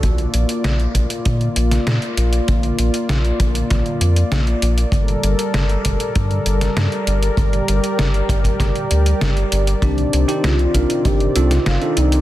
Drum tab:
HH |xxxxxxxxxxxxxxxx|xxxxxxxxxxxxxxxx|xxxxxxxxxxxxxxxx|xxxxxxxxxxxxxxxx|
SD |----o------oo---|----o---o---o---|----o------oo---|----o---o---o---|
BD |o-----o-o-------|o-----o-o-------|o-----o-o-------|o-----ooo-------|

HH |xxxxxxxxxxxxxxxx|
SD |----o------oo---|
BD |o-----o-o-------|